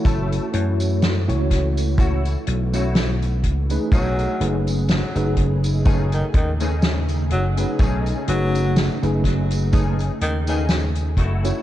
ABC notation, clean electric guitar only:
X:1
M:4/4
L:1/16
Q:"Swing 16ths" 1/4=62
K:Bmix
V:1 name="Clean electric guitar"
[A,EA]2 z6 [A,EF]2 z [A,EF] z4 | [A,CDG]2 z6 [A,CDG]2 z [A,CDG] z4 | [A,CDG]2 z6 [A,CDG]2 z [A,CDG] z2 [A,EF]2 |]